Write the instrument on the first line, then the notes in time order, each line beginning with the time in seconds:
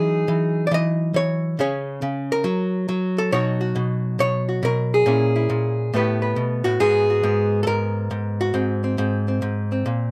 hollow-body jazz guitar
Already playing: E3 F#3 D#4 G#4
0.28 E3
0.67 D5
0.71 E3 D#5
1.14 E3 C#5
1.59 C#3 C#4 G#4 C#5
2.02 C#3
2.32 A#4
2.44 F#3
2.89 F#3
3.18 A4
3.32 B2 F#3 D#4 F#4 C#5
3.61 F#4
3.76 B2
4.19 B2 C#5
4.49 F#4
4.63 B2 A#4
4.94 G#4
5.06 A#2 A#3 C#4 E4
5.36 E4
5.50 A#2
5.94 A2 A3 B3 G4 B4
6.22 B4
6.36 B2
6.64 A2 F#4
6.80 G#2 G#3 B3 F#4 G#4
7.10 F#4
7.23 G#2 B3
7.63 G#2 A4
7.67 A#4
8.11 G#2
8.41 F#4
8.54 G#2 C4
8.84 C4
8.98 G#2 C4
9.28 C4
9.42 G#2
9.72 C4
9.86 A#2